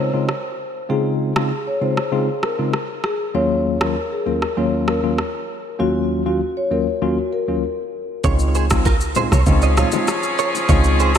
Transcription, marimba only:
0.00 0.11 C5 medium
0.90 1.03 G#4 medium
1.36 1.49 G#4 medium
1.67 1.79 C#5 medium
1.82 1.95 C5 medium
2.13 2.26 G#4 medium
2.43 2.56 A#4 medium
3.04 3.18 G#4 medium
3.35 3.48 C#5 loud
3.81 3.94 A#4 medium
4.12 4.24 G#4 medium
4.27 4.40 A#4 medium
4.57 4.71 C#5 medium
4.88 5.01 A#4 medium
5.80 5.93 F#4 loud
6.26 6.39 F#4 medium
6.57 6.69 C#5 medium
6.72 6.85 A#4 medium
7.02 7.15 F#4 medium
7.33 7.46 A#4 medium

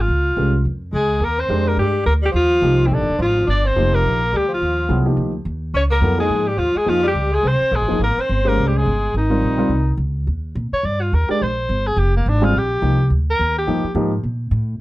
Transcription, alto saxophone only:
0.01 0.68 F4 medium
0.95 1.26 G#4 medium
1.24 1.41 A#4 medium
1.40 1.70 C5 medium
1.68 1.78 A#4 medium
1.79 2.05 G4 medium
2.06 2.14 A#4 medium
2.25 2.30 G4 medium
2.36 2.88 F4 medium
2.86 2.95 C4 medium
2.94 3.21 D4 medium
3.22 3.47 F4 medium
3.50 3.68 D5 medium
3.67 3.97 C5 medium
3.95 4.38 A#4 medium
4.36 4.51 G4 medium
4.54 5.04 F4 medium
5.76 5.83 C#5 medium
5.91 6.18 A#4 medium
6.20 6.49 G#4 medium
6.48 6.60 G4 medium
6.58 6.79 F4 medium
6.77 6.90 G#4 medium
6.89 7.05 F4 medium
7.07 7.36 G4 medium
7.35 7.49 G#4 medium
7.47 7.77 C5 medium
7.76 8.02 G#4 medium
8.03 8.22 A#4 medium
8.21 8.50 C5 medium
8.48 8.69 A#4 medium
8.68 8.79 G4 medium
8.77 9.15 G#4 medium
9.17 9.96 D#4 medium
10.73 10.87 C#5 medium
10.85 11.03 D5 medium
11.01 11.16 F4 medium
11.14 11.30 A#4 medium
11.31 11.44 D5 loud
11.42 11.88 C5 medium
11.87 12.00 G#4 medium
11.99 12.15 G4 medium
12.16 12.30 A#3 medium
12.28 12.46 D4 medium
12.44 12.59 F4 medium
12.58 13.12 G4 medium
13.30 13.55 A#4 medium
13.58 13.94 G4 medium

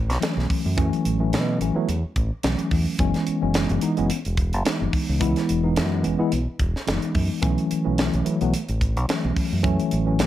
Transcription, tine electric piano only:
0.20 0.74 E3 medium
0.20 0.74 F#3 medium
0.20 0.74 A3 medium
0.20 0.74 C#4 medium
0.77 1.17 E3 loud
0.77 1.18 F#3 medium
0.77 1.18 A3 medium
0.77 1.18 C#4 loud
1.19 1.58 E3 medium
1.19 1.58 F#3 medium
1.19 1.58 A3 medium
1.19 1.59 C#4 medium
1.61 1.74 E3 medium
1.61 1.75 F#3 medium
1.61 1.75 A3 medium
1.61 1.76 C#4 medium
1.75 1.87 E3 loud
1.75 1.88 F#3 loud
1.75 1.87 A3 medium
1.75 1.88 B3 loud
1.88 1.95 A3 soft
2.43 2.96 E3 medium
2.43 2.97 F#3 medium
2.43 2.97 A3 medium
2.43 2.97 C#4 medium
2.99 3.40 E3 loud
2.99 3.40 G#3 medium
2.99 3.40 B3 medium
2.99 3.40 C#4 loud
3.41 3.80 E3 medium
3.41 3.80 G#3 medium
3.41 3.80 B3 medium
3.41 3.81 C#4 medium
3.82 3.96 E3 medium
3.82 3.96 G#3 medium
3.82 3.96 B3 medium
3.82 3.97 D#4 loud
3.97 4.09 E3 medium
3.97 4.09 G#3 medium
3.97 4.09 B3 medium
3.97 4.09 C#4 loud
4.10 4.18 B3 soft
4.10 4.18 C#4 soft
4.65 5.18 E3 medium
4.65 5.18 G#3 medium
4.65 5.19 B3 medium
4.65 5.19 D#4 medium
5.20 5.61 E3 loud
5.20 5.61 G#3 medium
5.20 5.61 B3 medium
5.20 5.62 E4 loud
5.63 6.02 E3 medium
5.63 6.02 G#3 medium
5.63 6.03 B3 medium
5.63 6.03 D#4 medium
6.03 6.17 E3 medium
6.03 6.18 G#3 medium
6.03 6.18 B3 medium
6.03 6.19 C#4 loud
6.19 6.31 E3 loud
6.19 6.31 G#3 medium
6.19 6.31 B3 medium
6.19 6.32 E4 loud
6.32 6.39 B3 soft
6.32 6.40 E4 soft
6.87 7.40 E3 medium
6.87 7.40 G#3 medium
6.87 7.40 B3 medium
6.87 7.40 D#4 medium
7.42 7.83 E3 loud
7.42 7.83 F#3 medium
7.42 7.83 A3 medium
7.42 7.83 C#4 loud
7.85 8.23 E3 medium
7.85 8.24 F#3 medium
7.85 8.24 A3 medium
7.85 8.24 C#4 medium
8.25 8.40 E3 medium
8.25 8.40 F#3 medium
8.25 8.40 A3 medium
8.25 8.40 E4 medium
8.41 8.53 E3 medium
8.41 8.53 F#3 medium
8.41 8.52 A3 medium
8.41 8.53 B3 loud
8.53 8.61 A3 soft
8.53 8.61 E4 soft
9.08 9.61 E3 medium
9.08 9.61 F#3 medium
9.08 9.62 A3 medium
9.08 9.62 C#4 medium
9.63 10.04 E3 loud
9.63 10.04 F#3 medium
9.63 10.04 A3 loud
9.63 10.04 C#4 loud
10.06 10.27 E3 medium
10.06 10.27 F#3 medium
10.06 10.27 A3 medium
10.06 10.27 C#4 medium

